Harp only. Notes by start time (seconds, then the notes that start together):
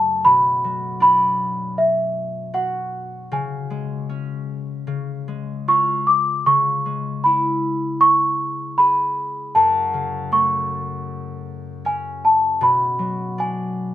Already playing: F#2 C#3 F#3 A3
0.25 B2
0.64 F#3
1.00 D4
2.54 F#4
3.32 C#3
3.70 G#3
4.09 C#4
4.87 C#3
5.28 G#3
5.68 F4
6.46 C#3
6.86 G#3
7.25 E4
8.79 G#4
9.55 F#2
9.94 C#3
10.32 A3
11.85 C#4
12.61 B2
12.99 F#3
13.38 D4